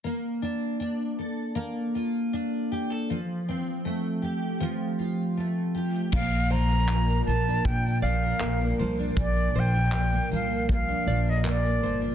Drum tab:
CC |--------|--------|x-------|--------|
CP |--------|--------|--x---x-|--x---x-|
BD |--------|--------|o---o---|o---o---|